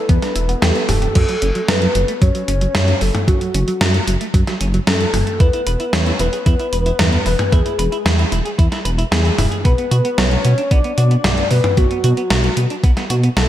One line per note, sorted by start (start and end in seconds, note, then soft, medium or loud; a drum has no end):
0.00 0.11 A4 loud
0.09 0.19 E2 loud
0.09 0.22 B3 loud
0.09 0.64 B4 loud
0.09 kick loud
0.09 closed hi-hat medium
0.22 0.33 D4 medium
0.22 snare soft
0.22 closed hi-hat soft
0.36 0.55 E1 medium
0.36 0.47 E4 medium
0.36 closed hi-hat medium
0.49 0.60 B3 medium
0.49 closed hi-hat soft
0.62 0.72 E2 medium
0.62 0.75 G4 loud
0.62 0.89 A4 medium
0.62 snare loud
0.62 closed hi-hat medium
0.75 0.82 B3 medium
0.75 closed hi-hat soft
0.89 1.08 E1 loud
0.89 1.00 G4 medium
0.89 1.70 A4 loud
0.89 open hi-hat medium
0.89 mid tom medium
1.02 1.09 G4 medium
1.02 closed hi-hat soft
1.15 1.25 F#2 loud
1.15 1.22 F#3 loud
1.15 kick loud
1.15 closed hi-hat medium
1.15 crash medium
1.29 1.35 F#3 medium
1.29 closed hi-hat soft
1.42 1.52 F#1 loud
1.42 1.46 C#4 loud
1.42 closed hi-hat loud
1.55 1.59 F#3 loud
1.55 closed hi-hat soft
1.68 1.87 F#2 medium
1.68 1.73 C#4 medium
1.68 2.24 B4 loud
1.68 snare loud
1.68 closed hi-hat medium
1.82 1.86 F#3 medium
1.82 closed hi-hat soft
1.95 2.05 F#1 medium
1.95 2.02 F#3 medium
1.95 closed hi-hat medium
2.08 2.12 A3 medium
2.08 closed hi-hat soft
2.22 2.31 F#2 loud
2.22 2.28 F#3 loud
2.22 3.03 C#5 loud
2.22 kick loud
2.22 closed hi-hat medium
2.35 2.42 F#3 medium
2.35 closed hi-hat soft
2.48 2.67 F#1 medium
2.48 2.52 C#4 loud
2.48 closed hi-hat loud
2.61 2.65 F#3 loud
2.61 closed hi-hat soft
2.75 2.94 F#2 loud
2.75 2.79 C#4 medium
2.75 snare loud
2.75 closed hi-hat medium
2.75 mid tom medium
2.88 2.92 F#3 medium
2.88 closed hi-hat soft
3.01 3.11 F#1 loud
3.01 3.08 F#3 medium
3.01 3.27 A4 medium
3.01 open hi-hat medium
3.15 3.19 A3 medium
3.15 closed hi-hat soft
3.15 mid tom medium
3.28 3.37 F#2 loud
3.28 3.35 F#3 loud
3.28 4.30 F#4 medium
3.28 kick loud
3.28 closed hi-hat medium
3.41 3.48 F#3 medium
3.41 closed hi-hat soft
3.54 3.64 F#1 loud
3.54 3.58 C#4 loud
3.54 closed hi-hat medium
3.68 3.72 F#3 loud
3.68 closed hi-hat soft
3.81 4.00 F#2 medium
3.81 3.85 C#4 medium
3.81 snare loud
3.81 closed hi-hat medium
3.94 3.98 F#3 medium
3.94 closed hi-hat soft
4.08 4.17 F#1 medium
4.08 4.14 F#3 medium
4.08 closed hi-hat loud
4.21 4.25 A3 medium
4.21 closed hi-hat soft
4.34 4.43 F#2 loud
4.34 4.41 F#3 loud
4.34 kick loud
4.34 closed hi-hat medium
4.47 4.54 F#3 medium
4.47 snare soft
4.47 closed hi-hat soft
4.61 4.80 F#1 medium
4.61 4.65 C#4 loud
4.61 closed hi-hat medium
4.74 4.78 F#3 loud
4.74 closed hi-hat soft
4.87 5.06 F#2 loud
4.87 4.91 C#4 medium
4.87 5.42 A4 medium
4.87 snare loud
4.87 closed hi-hat medium
5.00 5.04 F#3 medium
5.00 closed hi-hat soft
5.13 5.23 F#1 loud
5.13 5.20 F#3 medium
5.13 open hi-hat medium
5.13 mid tom medium
5.27 5.31 A3 medium
5.27 closed hi-hat soft
5.40 5.50 E2 loud
5.40 5.47 E4 loud
5.40 5.95 B4 loud
5.40 kick loud
5.40 closed hi-hat medium
5.53 5.60 E4 medium
5.53 closed hi-hat soft
5.67 5.76 E1 loud
5.67 5.71 B4 loud
5.67 closed hi-hat loud
5.80 5.84 E4 loud
5.80 closed hi-hat soft
5.93 6.12 E2 medium
5.93 5.97 B4 medium
5.93 6.19 C#5 loud
5.93 snare loud
5.93 closed hi-hat medium
6.06 6.11 E4 medium
6.06 closed hi-hat soft
6.19 6.29 E1 medium
6.19 6.27 E4 medium
6.19 7.22 B4 loud
6.19 closed hi-hat medium
6.33 6.37 G#4 medium
6.33 closed hi-hat soft
6.46 6.56 E2 loud
6.46 6.53 E4 loud
6.46 kick loud
6.46 closed hi-hat medium
6.59 6.66 E4 medium
6.59 closed hi-hat soft
6.73 6.92 E1 medium
6.73 6.77 B4 loud
6.73 closed hi-hat loud
6.86 6.90 E4 loud
6.86 closed hi-hat soft
6.99 7.18 E2 loud
6.99 7.03 B4 medium
6.99 snare loud
6.99 closed hi-hat medium
6.99 mid tom loud
7.13 7.17 E4 medium
7.13 closed hi-hat soft
7.26 7.35 E1 loud
7.26 7.33 E4 medium
7.26 7.54 B4 loud
7.26 open hi-hat medium
7.39 7.43 G#4 medium
7.39 closed hi-hat soft
7.39 mid tom medium
7.52 7.62 E2 loud
7.52 7.59 E4 loud
7.52 8.59 G#4 medium
7.52 kick loud
7.52 closed hi-hat medium
7.65 7.72 E4 medium
7.65 closed hi-hat soft
7.79 7.88 E1 loud
7.79 7.83 B4 loud
7.79 closed hi-hat medium
7.92 7.96 E4 loud
7.92 closed hi-hat soft
8.05 8.24 E2 medium
8.05 8.10 B4 medium
8.05 snare loud
8.05 closed hi-hat medium
8.19 8.23 E4 medium
8.19 closed hi-hat soft
8.32 8.42 E1 medium
8.32 8.39 E4 medium
8.32 closed hi-hat medium
8.45 8.49 G#4 medium
8.45 closed hi-hat soft
8.58 8.68 E2 loud
8.58 8.65 E4 loud
8.58 kick loud
8.58 closed hi-hat medium
8.72 8.78 E4 medium
8.72 snare soft
8.72 closed hi-hat soft
8.85 9.04 E1 medium
8.85 8.89 B4 loud
8.85 closed hi-hat medium
8.98 9.02 E4 loud
8.98 closed hi-hat soft
9.11 9.31 E2 medium
9.11 9.62 G#4 medium
9.11 9.16 B4 medium
9.11 snare loud
9.11 closed hi-hat medium
9.25 9.29 E4 medium
9.25 closed hi-hat soft
9.38 9.48 E1 loud
9.38 9.45 E4 medium
9.38 open hi-hat medium
9.38 mid tom loud
9.51 9.55 G#4 medium
9.51 closed hi-hat soft
9.65 9.74 B1 loud
9.65 9.71 B3 loud
9.65 10.20 B4 loud
9.65 kick loud
9.65 closed hi-hat medium
9.78 9.85 B3 medium
9.78 closed hi-hat soft
9.91 10.01 B2 loud
9.91 9.95 F#4 loud
9.91 closed hi-hat medium
10.05 10.09 B3 loud
10.05 closed hi-hat soft
10.18 10.37 B1 medium
10.18 10.22 F#4 medium
10.18 10.73 C#5 loud
10.18 snare loud
10.18 closed hi-hat medium
10.31 10.35 B3 medium
10.31 closed hi-hat soft
10.45 10.54 B2 medium
10.45 10.51 B3 medium
10.45 closed hi-hat medium
10.58 10.62 D4 medium
10.58 closed hi-hat soft
10.71 10.81 B1 loud
10.71 10.78 B3 loud
10.71 11.52 D5 loud
10.71 kick loud
10.71 closed hi-hat medium
10.84 10.91 B3 medium
10.84 closed hi-hat soft
10.98 11.17 B2 medium
10.98 11.02 F#4 loud
10.98 closed hi-hat medium
11.11 11.15 B3 loud
11.11 closed hi-hat soft
11.24 11.43 B1 loud
11.24 11.28 F#4 medium
11.24 snare loud
11.24 closed hi-hat medium
11.24 mid tom loud
11.37 11.41 B3 medium
11.37 closed hi-hat soft
11.51 11.60 B2 loud
11.51 11.57 B3 medium
11.51 11.79 B4 loud
11.51 open hi-hat medium
11.64 11.68 D4 medium
11.64 closed hi-hat soft
11.64 mid tom loud
11.77 11.87 B1 loud
11.77 11.84 B3 loud
11.77 12.84 F#4 medium
11.77 kick loud
11.77 closed hi-hat medium
11.91 11.97 B3 medium
11.91 closed hi-hat soft
12.04 12.13 B2 loud
12.04 12.08 F#4 loud
12.04 closed hi-hat medium
12.17 12.21 B3 loud
12.17 closed hi-hat soft
12.30 12.49 B1 medium
12.30 12.35 F#4 medium
12.30 snare loud
12.30 closed hi-hat medium
12.44 12.48 B3 medium
12.44 closed hi-hat soft
12.57 12.67 B2 medium
12.57 12.64 B3 medium
12.57 closed hi-hat medium
12.70 12.74 D4 medium
12.70 closed hi-hat soft
12.84 12.93 B1 loud
12.84 12.90 B3 loud
12.84 kick loud
12.84 closed hi-hat medium
12.97 13.04 B3 medium
12.97 snare soft
12.97 closed hi-hat soft
13.10 13.29 B2 medium
13.10 13.14 F#4 loud
13.10 closed hi-hat medium
13.23 13.27 B3 loud
13.23 closed hi-hat soft
13.37 13.48 B1 loud
13.37 13.41 F#4 medium
13.37 13.48 A4 medium
13.37 snare loud
13.37 closed hi-hat medium